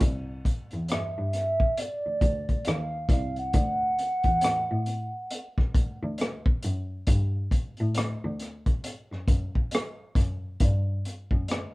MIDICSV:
0, 0, Header, 1, 4, 480
1, 0, Start_track
1, 0, Tempo, 882353
1, 8, Time_signature, 4, 2, 24, 8
1, 6388, End_track
2, 0, Start_track
2, 0, Title_t, "Soft synth lead"
2, 0, Program_c, 0, 80
2, 502, Note_on_c, 0, 76, 88
2, 976, Note_on_c, 0, 74, 91
2, 984, Note_off_c, 0, 76, 0
2, 1454, Note_on_c, 0, 77, 92
2, 1462, Note_off_c, 0, 74, 0
2, 1691, Note_off_c, 0, 77, 0
2, 1703, Note_on_c, 0, 77, 96
2, 1833, Note_off_c, 0, 77, 0
2, 1843, Note_on_c, 0, 78, 105
2, 3257, Note_off_c, 0, 78, 0
2, 6388, End_track
3, 0, Start_track
3, 0, Title_t, "Cello"
3, 0, Program_c, 1, 42
3, 9, Note_on_c, 1, 36, 85
3, 200, Note_off_c, 1, 36, 0
3, 399, Note_on_c, 1, 40, 77
3, 471, Note_off_c, 1, 40, 0
3, 496, Note_on_c, 1, 43, 43
3, 602, Note_off_c, 1, 43, 0
3, 640, Note_on_c, 1, 43, 77
3, 829, Note_off_c, 1, 43, 0
3, 1122, Note_on_c, 1, 38, 43
3, 1188, Note_off_c, 1, 38, 0
3, 1208, Note_on_c, 1, 38, 78
3, 1399, Note_off_c, 1, 38, 0
3, 1457, Note_on_c, 1, 39, 91
3, 1644, Note_off_c, 1, 39, 0
3, 1683, Note_on_c, 1, 36, 84
3, 1926, Note_off_c, 1, 36, 0
3, 1929, Note_on_c, 1, 38, 92
3, 2119, Note_off_c, 1, 38, 0
3, 2312, Note_on_c, 1, 40, 77
3, 2387, Note_off_c, 1, 40, 0
3, 2413, Note_on_c, 1, 45, 41
3, 2521, Note_off_c, 1, 45, 0
3, 2561, Note_on_c, 1, 45, 78
3, 2750, Note_off_c, 1, 45, 0
3, 3130, Note_on_c, 1, 38, 39
3, 3239, Note_off_c, 1, 38, 0
3, 3281, Note_on_c, 1, 38, 79
3, 3353, Note_off_c, 1, 38, 0
3, 3615, Note_on_c, 1, 42, 79
3, 3803, Note_off_c, 1, 42, 0
3, 3852, Note_on_c, 1, 43, 91
3, 4042, Note_off_c, 1, 43, 0
3, 4246, Note_on_c, 1, 45, 89
3, 4315, Note_off_c, 1, 45, 0
3, 4337, Note_on_c, 1, 38, 45
3, 4442, Note_off_c, 1, 38, 0
3, 4484, Note_on_c, 1, 38, 78
3, 4672, Note_off_c, 1, 38, 0
3, 4962, Note_on_c, 1, 42, 47
3, 5028, Note_off_c, 1, 42, 0
3, 5052, Note_on_c, 1, 42, 75
3, 5241, Note_off_c, 1, 42, 0
3, 5529, Note_on_c, 1, 42, 79
3, 5720, Note_off_c, 1, 42, 0
3, 5775, Note_on_c, 1, 43, 92
3, 5963, Note_off_c, 1, 43, 0
3, 6158, Note_on_c, 1, 42, 74
3, 6230, Note_off_c, 1, 42, 0
3, 6259, Note_on_c, 1, 38, 41
3, 6364, Note_off_c, 1, 38, 0
3, 6388, End_track
4, 0, Start_track
4, 0, Title_t, "Drums"
4, 3, Note_on_c, 9, 42, 82
4, 6, Note_on_c, 9, 36, 96
4, 57, Note_off_c, 9, 42, 0
4, 60, Note_off_c, 9, 36, 0
4, 245, Note_on_c, 9, 36, 72
4, 249, Note_on_c, 9, 42, 57
4, 300, Note_off_c, 9, 36, 0
4, 303, Note_off_c, 9, 42, 0
4, 385, Note_on_c, 9, 42, 29
4, 439, Note_off_c, 9, 42, 0
4, 481, Note_on_c, 9, 42, 78
4, 499, Note_on_c, 9, 37, 105
4, 536, Note_off_c, 9, 42, 0
4, 553, Note_off_c, 9, 37, 0
4, 725, Note_on_c, 9, 42, 58
4, 740, Note_on_c, 9, 37, 28
4, 779, Note_off_c, 9, 42, 0
4, 795, Note_off_c, 9, 37, 0
4, 870, Note_on_c, 9, 36, 78
4, 924, Note_off_c, 9, 36, 0
4, 966, Note_on_c, 9, 42, 77
4, 1020, Note_off_c, 9, 42, 0
4, 1203, Note_on_c, 9, 36, 87
4, 1206, Note_on_c, 9, 42, 59
4, 1258, Note_off_c, 9, 36, 0
4, 1260, Note_off_c, 9, 42, 0
4, 1353, Note_on_c, 9, 42, 29
4, 1354, Note_on_c, 9, 36, 59
4, 1408, Note_off_c, 9, 42, 0
4, 1409, Note_off_c, 9, 36, 0
4, 1440, Note_on_c, 9, 42, 74
4, 1459, Note_on_c, 9, 37, 96
4, 1494, Note_off_c, 9, 42, 0
4, 1513, Note_off_c, 9, 37, 0
4, 1679, Note_on_c, 9, 36, 96
4, 1683, Note_on_c, 9, 42, 74
4, 1697, Note_on_c, 9, 37, 35
4, 1734, Note_off_c, 9, 36, 0
4, 1737, Note_off_c, 9, 42, 0
4, 1752, Note_off_c, 9, 37, 0
4, 1829, Note_on_c, 9, 42, 29
4, 1884, Note_off_c, 9, 42, 0
4, 1922, Note_on_c, 9, 42, 78
4, 1925, Note_on_c, 9, 36, 96
4, 1977, Note_off_c, 9, 42, 0
4, 1980, Note_off_c, 9, 36, 0
4, 2169, Note_on_c, 9, 42, 55
4, 2223, Note_off_c, 9, 42, 0
4, 2304, Note_on_c, 9, 42, 32
4, 2307, Note_on_c, 9, 36, 68
4, 2358, Note_off_c, 9, 42, 0
4, 2362, Note_off_c, 9, 36, 0
4, 2401, Note_on_c, 9, 42, 92
4, 2418, Note_on_c, 9, 37, 99
4, 2455, Note_off_c, 9, 42, 0
4, 2472, Note_off_c, 9, 37, 0
4, 2644, Note_on_c, 9, 42, 56
4, 2699, Note_off_c, 9, 42, 0
4, 2886, Note_on_c, 9, 42, 78
4, 2940, Note_off_c, 9, 42, 0
4, 3034, Note_on_c, 9, 36, 80
4, 3044, Note_on_c, 9, 37, 32
4, 3088, Note_off_c, 9, 36, 0
4, 3099, Note_off_c, 9, 37, 0
4, 3125, Note_on_c, 9, 36, 92
4, 3129, Note_on_c, 9, 42, 63
4, 3180, Note_off_c, 9, 36, 0
4, 3184, Note_off_c, 9, 42, 0
4, 3362, Note_on_c, 9, 42, 70
4, 3380, Note_on_c, 9, 37, 97
4, 3416, Note_off_c, 9, 42, 0
4, 3435, Note_off_c, 9, 37, 0
4, 3513, Note_on_c, 9, 36, 97
4, 3567, Note_off_c, 9, 36, 0
4, 3604, Note_on_c, 9, 42, 67
4, 3659, Note_off_c, 9, 42, 0
4, 3845, Note_on_c, 9, 42, 84
4, 3847, Note_on_c, 9, 36, 92
4, 3899, Note_off_c, 9, 42, 0
4, 3902, Note_off_c, 9, 36, 0
4, 4087, Note_on_c, 9, 36, 77
4, 4090, Note_on_c, 9, 42, 61
4, 4141, Note_off_c, 9, 36, 0
4, 4145, Note_off_c, 9, 42, 0
4, 4226, Note_on_c, 9, 42, 28
4, 4281, Note_off_c, 9, 42, 0
4, 4323, Note_on_c, 9, 42, 87
4, 4340, Note_on_c, 9, 37, 105
4, 4377, Note_off_c, 9, 42, 0
4, 4394, Note_off_c, 9, 37, 0
4, 4567, Note_on_c, 9, 42, 55
4, 4582, Note_on_c, 9, 37, 30
4, 4621, Note_off_c, 9, 42, 0
4, 4637, Note_off_c, 9, 37, 0
4, 4712, Note_on_c, 9, 42, 33
4, 4713, Note_on_c, 9, 36, 77
4, 4767, Note_off_c, 9, 36, 0
4, 4767, Note_off_c, 9, 42, 0
4, 4809, Note_on_c, 9, 42, 77
4, 4863, Note_off_c, 9, 42, 0
4, 4965, Note_on_c, 9, 37, 31
4, 5019, Note_off_c, 9, 37, 0
4, 5046, Note_on_c, 9, 36, 100
4, 5049, Note_on_c, 9, 42, 61
4, 5101, Note_off_c, 9, 36, 0
4, 5103, Note_off_c, 9, 42, 0
4, 5197, Note_on_c, 9, 36, 64
4, 5252, Note_off_c, 9, 36, 0
4, 5284, Note_on_c, 9, 42, 77
4, 5303, Note_on_c, 9, 37, 105
4, 5338, Note_off_c, 9, 42, 0
4, 5357, Note_off_c, 9, 37, 0
4, 5523, Note_on_c, 9, 36, 95
4, 5527, Note_on_c, 9, 42, 74
4, 5541, Note_on_c, 9, 37, 38
4, 5578, Note_off_c, 9, 36, 0
4, 5581, Note_off_c, 9, 42, 0
4, 5596, Note_off_c, 9, 37, 0
4, 5766, Note_on_c, 9, 42, 85
4, 5769, Note_on_c, 9, 36, 99
4, 5821, Note_off_c, 9, 42, 0
4, 5823, Note_off_c, 9, 36, 0
4, 6013, Note_on_c, 9, 42, 58
4, 6067, Note_off_c, 9, 42, 0
4, 6151, Note_on_c, 9, 36, 70
4, 6206, Note_off_c, 9, 36, 0
4, 6247, Note_on_c, 9, 42, 87
4, 6264, Note_on_c, 9, 37, 95
4, 6301, Note_off_c, 9, 42, 0
4, 6319, Note_off_c, 9, 37, 0
4, 6388, End_track
0, 0, End_of_file